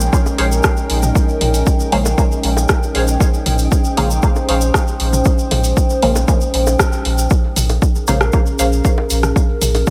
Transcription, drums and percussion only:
0.00 shaker medium
0.13 kick loud
0.13 shaker medium
0.26 low bongo medium
0.26 shaker soft
0.38 open hi-hat medium
0.52 shaker medium
0.63 kick loud
0.63 cross-stick medium
0.63 shaker medium
0.77 shaker soft
0.90 open hi-hat medium
1.03 mid tom medium
1.03 shaker medium
1.15 kick loud
1.15 shaker medium
1.29 shaker soft
1.41 mid tom medium
1.41 open hi-hat medium
1.54 open hi-hat soft
1.54 shaker medium
1.66 kick loud
1.66 shaker medium
1.80 shaker soft
1.92 open hi-hat medium
2.06 low bongo medium
2.06 shaker medium
2.18 kick loud
2.18 shaker medium
2.32 shaker soft
2.43 open hi-hat medium
2.57 low bongo medium
2.57 shaker medium
2.69 kick loud
2.69 cross-stick medium
2.69 shaker medium
2.83 shaker soft
2.95 open hi-hat medium
3.08 shaker medium
3.20 kick loud
3.20 shaker medium
3.34 shaker soft
3.46 mid tom medium
3.46 open hi-hat medium
3.59 open hi-hat soft
3.59 shaker medium
3.72 kick loud
3.72 shaker medium
3.84 shaker soft
3.97 open hi-hat medium
4.11 shaker medium
4.23 kick loud
4.23 shaker medium
4.36 low bongo medium
4.36 shaker soft
4.49 open hi-hat medium
4.61 shaker medium
4.74 kick loud
4.74 cross-stick medium
4.74 shaker medium
4.88 shaker soft
5.00 open hi-hat medium
5.13 mid tom medium
5.13 shaker medium
5.25 kick loud
5.25 shaker medium
5.39 shaker soft
5.51 mid tom medium
5.51 open hi-hat medium
5.51 low bongo medium
5.64 open hi-hat soft
5.64 shaker medium
5.77 kick loud
5.77 shaker medium
5.90 shaker soft
6.02 open hi-hat medium
6.16 low bongo medium
6.16 shaker medium
6.28 kick loud
6.28 shaker medium
6.41 shaker soft
6.54 open hi-hat medium
6.67 low bongo medium
6.67 shaker medium
6.79 kick loud
6.79 cross-stick medium
6.79 shaker medium
6.93 shaker soft
7.05 open hi-hat medium
7.18 shaker medium
7.30 kick loud
7.30 shaker medium
7.56 mid tom loud
7.56 open hi-hat medium
7.56 shaker loud
7.69 open hi-hat soft
7.69 low bongo medium
7.69 shaker soft
7.82 kick loud
7.82 shaker medium
7.95 shaker soft
8.08 open hi-hat medium
8.08 shaker medium
8.21 cross-stick medium
8.21 shaker soft
8.33 kick loud
8.33 shaker medium
8.46 shaker soft
8.59 open hi-hat medium
8.59 shaker medium
8.73 shaker soft
8.85 kick loud
8.85 shaker medium
8.98 low bongo medium
9.10 open hi-hat medium
9.10 shaker medium
9.23 cross-stick medium
9.23 mid tom loud
9.23 shaker soft
9.36 kick loud
9.36 shaker medium
9.62 mid tom loud
9.62 open hi-hat medium
9.62 shaker loud
9.75 open hi-hat soft
9.75 low bongo medium
9.75 shaker soft
9.87 shaker medium

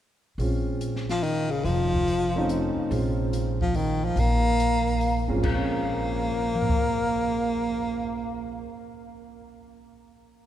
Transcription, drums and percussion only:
0.40 open hi-hat soft
0.81 closed hi-hat soft
0.96 snare soft
1.09 snare soft
1.09 open hi-hat soft
1.23 open hi-hat soft
1.65 open hi-hat soft
1.94 kick soft
2.07 open hi-hat soft
2.49 closed hi-hat soft
2.91 open hi-hat soft
3.33 closed hi-hat soft
3.61 kick soft
3.74 open hi-hat soft
4.17 open hi-hat soft
4.60 closed hi-hat soft
4.87 open hi-hat soft
5.01 open hi-hat soft
5.43 kick soft
5.43 crash soft
6.55 mid tom soft
6.62 floor tom medium
6.69 kick medium

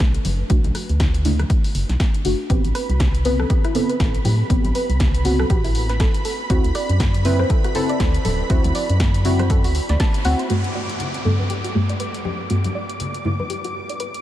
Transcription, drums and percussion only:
0.00 kick loud
0.00 snare loud
0.00 closed hi-hat medium
0.14 closed hi-hat medium
0.25 open hi-hat loud
0.25 high conga medium
0.50 kick loud
0.50 closed hi-hat medium
0.64 closed hi-hat soft
0.64 high conga medium
0.75 cross-stick medium
0.75 open hi-hat loud
0.89 closed hi-hat soft
1.00 kick loud
1.00 snare loud
1.00 closed hi-hat medium
1.00 low conga medium
1.14 closed hi-hat soft
1.25 open hi-hat loud
1.25 low conga medium
1.39 cross-stick medium
1.39 closed hi-hat soft
1.39 high conga medium
1.50 kick loud
1.50 closed hi-hat medium
1.64 open hi-hat medium
1.75 open hi-hat loud
1.89 snare soft
1.89 closed hi-hat soft
2.00 kick loud
2.00 snare loud
2.00 closed hi-hat medium
2.14 closed hi-hat soft
2.25 open hi-hat loud
2.50 kick loud
2.50 closed hi-hat medium
2.65 closed hi-hat soft
2.75 cross-stick medium
2.75 open hi-hat loud
2.90 closed hi-hat soft
2.99 kick medium
2.99 snare loud
2.99 closed hi-hat medium
2.99 low conga medium
3.15 closed hi-hat soft
3.25 open hi-hat loud
3.25 low conga medium
3.39 cross-stick medium
3.39 high conga medium
3.50 kick loud
3.50 closed hi-hat medium
3.65 cross-stick medium
3.65 closed hi-hat soft
3.75 open hi-hat loud
3.75 low conga medium
3.89 closed hi-hat soft
4.00 kick loud
4.00 snare loud
4.00 closed hi-hat medium
4.15 closed hi-hat soft
4.25 open hi-hat loud
4.25 high conga medium
4.50 kick loud
4.50 closed hi-hat medium
4.64 closed hi-hat soft
4.64 high conga medium
4.75 open hi-hat loud
4.90 closed hi-hat soft
5.00 kick medium
5.00 snare loud
5.00 closed hi-hat medium
5.00 low conga medium
5.14 closed hi-hat soft
5.24 open hi-hat loud
5.24 low conga medium
5.39 cross-stick medium
5.39 high conga medium
5.50 kick loud
5.50 closed hi-hat medium
5.64 open hi-hat medium
5.75 open hi-hat medium
5.89 snare soft
5.89 closed hi-hat soft
6.00 kick loud
6.00 snare loud
6.00 closed hi-hat medium
6.14 closed hi-hat medium
6.25 open hi-hat loud
6.50 kick loud
6.50 closed hi-hat medium
6.64 closed hi-hat soft
6.75 cross-stick medium
6.75 open hi-hat loud
6.89 closed hi-hat soft
7.00 kick medium
7.00 snare loud
7.00 closed hi-hat medium
7.00 low conga medium
7.14 closed hi-hat medium
7.25 open hi-hat loud
7.25 low conga medium
7.39 cross-stick medium
7.39 high conga medium
7.50 kick loud
7.50 closed hi-hat medium
7.64 cross-stick medium
7.64 closed hi-hat medium
7.75 open hi-hat loud
7.75 low conga medium
7.89 closed hi-hat soft
8.00 kick loud
8.00 snare loud
8.00 closed hi-hat medium
8.14 closed hi-hat medium
8.25 open hi-hat loud
8.25 high conga medium
8.50 kick loud
8.50 closed hi-hat medium
8.64 closed hi-hat medium
8.64 high conga medium
8.75 open hi-hat loud
8.89 closed hi-hat soft
9.00 kick loud
9.00 snare loud
9.00 closed hi-hat medium
9.00 low conga medium
9.14 closed hi-hat medium
9.25 open hi-hat loud
9.25 low conga medium
9.39 cross-stick medium
9.39 closed hi-hat soft
9.39 high conga medium
9.50 kick loud
9.50 closed hi-hat medium
9.64 open hi-hat medium
9.75 open hi-hat loud
9.89 snare soft
9.89 closed hi-hat soft
10.00 kick loud
10.00 snare loud
10.00 closed hi-hat medium
10.14 closed hi-hat medium
10.25 open hi-hat loud
10.39 closed hi-hat soft
10.50 closed hi-hat medium
10.64 closed hi-hat soft
10.89 closed hi-hat soft
11.00 closed hi-hat medium
11.00 low conga medium
11.14 closed hi-hat soft
11.25 low conga medium
11.39 high conga medium
11.50 closed hi-hat medium
11.64 closed hi-hat soft
11.89 closed hi-hat soft
12.00 closed hi-hat medium
12.14 closed hi-hat soft
12.25 high conga medium
12.50 closed hi-hat medium
12.64 closed hi-hat soft
12.64 high conga medium
12.89 closed hi-hat soft
13.00 closed hi-hat medium
13.00 low conga medium
13.14 closed hi-hat soft
13.25 low conga medium
13.40 high conga medium
13.50 closed hi-hat medium
13.64 closed hi-hat soft
13.89 closed hi-hat soft
14.00 closed hi-hat medium
14.14 closed hi-hat soft

